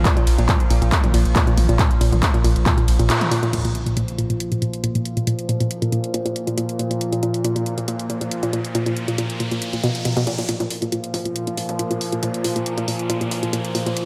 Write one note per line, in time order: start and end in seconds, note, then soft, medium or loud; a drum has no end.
0.00 3.52 A#2 medium
0.00 3.52 F3 medium
0.05 0.16 A#2 medium
0.05 kick loud
0.05 clap loud
0.05 closed hi-hat medium
0.17 0.26 A#2 medium
0.17 closed hi-hat medium
0.27 0.38 A#1 medium
0.27 open hi-hat loud
0.27 ride medium
0.38 0.49 A#1 medium
0.38 0.47 A#2 medium
0.38 closed hi-hat medium
0.49 0.59 A#2 medium
0.49 kick loud
0.49 clap loud
0.49 closed hi-hat medium
0.49 mid tom medium
0.60 closed hi-hat medium
0.70 0.81 A#1 loud
0.70 0.81 A#2 medium
0.70 open hi-hat medium
0.70 ride medium
0.82 0.92 A#1 medium
0.82 0.92 A#2 medium
0.82 closed hi-hat medium
0.92 kick loud
0.92 clap loud
0.92 closed hi-hat medium
1.04 1.13 A#2 medium
1.04 closed hi-hat medium
1.04 mid tom medium
1.14 1.25 A#1 loud
1.14 1.25 A#2 medium
1.14 open hi-hat loud
1.14 ride medium
1.25 1.36 A#1 medium
1.25 closed hi-hat medium
1.36 1.46 A#2 medium
1.36 kick loud
1.36 clap loud
1.36 closed hi-hat medium
1.47 1.57 A#2 medium
1.47 closed hi-hat medium
1.57 1.68 A#1 loud
1.57 open hi-hat medium
1.57 mid tom medium
1.57 ride medium
1.69 1.79 A#1 medium
1.69 1.78 A#2 medium
1.69 closed hi-hat medium
1.79 1.90 A#2 medium
1.79 kick loud
1.79 clap loud
1.79 closed hi-hat loud
1.91 closed hi-hat medium
2.01 2.12 A#1 loud
2.01 2.11 A#2 medium
2.01 open hi-hat loud
2.01 ride medium
2.12 2.23 A#1 medium
2.12 2.22 A#2 medium
2.12 closed hi-hat medium
2.12 mid tom medium
2.23 kick loud
2.23 clap loud
2.23 closed hi-hat medium
2.34 2.43 A#2 medium
2.34 closed hi-hat medium
2.44 2.55 A#1 loud
2.44 2.55 A#2 medium
2.44 open hi-hat medium
2.44 ride medium
2.56 2.66 A#1 medium
2.56 closed hi-hat medium
2.66 2.76 A#2 medium
2.66 kick loud
2.66 clap loud
2.66 closed hi-hat loud
2.66 mid tom medium
2.78 2.87 A#2 medium
2.78 closed hi-hat medium
2.88 2.99 A#1 loud
2.88 open hi-hat loud
2.88 ride medium
2.99 3.10 A#1 medium
2.99 3.08 A#2 medium
2.99 closed hi-hat medium
3.10 3.20 A#2 medium
3.10 clap loud
3.10 closed hi-hat loud
3.21 closed hi-hat medium
3.21 mid tom medium
3.31 3.41 A#2 medium
3.31 open hi-hat medium
3.31 ride medium
3.43 3.52 A#2 medium
3.43 closed hi-hat medium
3.53 3.63 A#2 medium
3.53 10.48 A#2 medium
3.53 10.48 F3 medium
3.53 closed hi-hat medium
3.53 crash medium
3.53 impact medium
3.65 3.74 A#2 medium
3.65 closed hi-hat medium
3.75 closed hi-hat medium
3.86 3.95 A#2 medium
3.86 closed hi-hat medium
3.97 4.07 A#2 medium
3.97 closed hi-hat medium
4.08 closed hi-hat medium
4.18 4.29 A#2 medium
4.18 closed hi-hat medium
4.30 4.39 A#2 medium
4.30 closed hi-hat medium
4.40 closed hi-hat medium
4.52 4.61 A#2 medium
4.52 closed hi-hat medium
4.62 4.73 A#2 medium
4.62 closed hi-hat medium
4.73 closed hi-hat medium
4.84 4.94 A#2 medium
4.84 closed hi-hat medium
4.95 5.05 A#2 medium
4.95 closed hi-hat medium
5.05 closed hi-hat medium
5.17 5.26 A#2 medium
5.17 closed hi-hat medium
5.27 5.38 A#2 medium
5.27 closed hi-hat medium
5.39 closed hi-hat medium
5.49 5.59 A#2 medium
5.49 closed hi-hat medium
5.60 5.70 A#2 medium
5.60 closed hi-hat medium
5.71 closed hi-hat medium
5.82 5.91 A#2 medium
5.82 closed hi-hat medium
5.92 6.03 A#2 medium
5.92 closed hi-hat medium
6.04 closed hi-hat medium
6.14 6.24 A#2 medium
6.14 closed hi-hat medium
6.26 6.35 A#2 medium
6.26 closed hi-hat medium
6.36 closed hi-hat medium
6.47 6.56 A#2 medium
6.47 closed hi-hat medium
6.58 6.68 A#2 medium
6.58 closed hi-hat medium
6.69 closed hi-hat medium
6.79 6.89 A#2 medium
6.79 closed hi-hat medium
6.91 7.00 A#2 medium
6.91 closed hi-hat medium
7.01 closed hi-hat medium
7.01 riser medium
7.12 7.22 A#2 medium
7.12 closed hi-hat medium
7.23 7.34 A#2 medium
7.23 closed hi-hat medium
7.34 closed hi-hat medium
7.45 7.55 A#2 medium
7.45 closed hi-hat medium
7.56 7.66 A#2 medium
7.56 closed hi-hat medium
7.66 closed hi-hat medium
7.78 7.87 A#2 medium
7.78 closed hi-hat medium
7.88 7.99 A#2 medium
7.88 closed hi-hat medium
7.99 closed hi-hat medium
8.10 8.20 A#2 medium
8.10 closed hi-hat medium
8.21 8.31 A#2 medium
8.21 closed hi-hat medium
8.31 closed hi-hat medium
8.43 8.52 A#2 medium
8.43 closed hi-hat medium
8.53 8.64 A#2 medium
8.53 closed hi-hat medium
8.65 closed hi-hat medium
8.75 8.85 A#2 medium
8.75 closed hi-hat medium
8.86 8.96 A#2 medium
8.86 closed hi-hat soft
8.97 closed hi-hat medium
9.08 9.17 A#2 medium
9.08 closed hi-hat medium
9.18 9.29 A#2 medium
9.18 closed hi-hat medium
9.30 closed hi-hat medium
9.40 9.50 A#2 medium
9.40 closed hi-hat medium
9.51 9.61 A#2 medium
9.51 closed hi-hat soft
9.62 closed hi-hat medium
9.73 9.83 A#2 medium
9.73 closed hi-hat soft
9.84 9.91 B2 loud
9.84 closed hi-hat medium
9.95 closed hi-hat soft
10.05 10.10 B2 medium
10.05 closed hi-hat medium
10.17 10.23 B2 loud
10.17 closed hi-hat medium
10.27 10.37 A#2 loud
10.27 closed hi-hat medium
10.38 10.42 A#2 medium
10.38 closed hi-hat medium
10.49 10.59 A#2 medium
10.49 14.05 A#2 medium
10.49 14.05 F3 medium
10.49 closed hi-hat medium
10.49 riser medium
10.60 10.70 A#2 medium
10.60 closed hi-hat medium
10.60 mid tom medium
10.70 open hi-hat loud
10.82 10.91 A#2 medium
10.82 closed hi-hat medium
10.92 11.03 A#2 medium
10.92 closed hi-hat medium
11.04 closed hi-hat medium
11.14 11.24 A#2 medium
11.14 open hi-hat medium
11.14 mid tom medium
11.25 11.35 A#2 medium
11.25 closed hi-hat medium
11.36 closed hi-hat loud
11.47 11.56 A#2 medium
11.47 closed hi-hat medium
11.57 11.68 A#2 medium
11.57 open hi-hat loud
11.69 closed hi-hat medium
11.69 mid tom medium
11.79 11.89 A#2 medium
11.79 closed hi-hat loud
11.91 12.00 A#2 medium
11.91 closed hi-hat medium
12.01 open hi-hat medium
12.12 12.22 A#2 medium
12.12 closed hi-hat medium
12.23 12.33 A#2 medium
12.23 closed hi-hat loud
12.23 mid tom medium
12.34 closed hi-hat medium
12.44 12.55 A#2 medium
12.44 open hi-hat loud
12.56 12.65 A#2 medium
12.56 closed hi-hat medium
12.66 closed hi-hat medium
12.78 12.87 A#2 medium
12.78 closed hi-hat medium
12.78 mid tom medium
12.88 12.99 A#2 medium
12.88 open hi-hat medium
12.99 closed hi-hat medium
13.10 13.20 A#2 medium
13.10 closed hi-hat loud
13.21 13.31 A#2 medium
13.21 closed hi-hat medium
13.31 open hi-hat loud
13.31 mid tom medium
13.43 13.52 A#2 medium
13.43 closed hi-hat medium
13.53 13.64 A#2 medium
13.53 closed hi-hat medium
13.65 closed hi-hat medium
13.75 13.85 A#2 medium
13.75 open hi-hat loud
13.86 13.96 A#2 medium
13.86 closed hi-hat medium
13.86 mid tom medium
13.97 closed hi-hat loud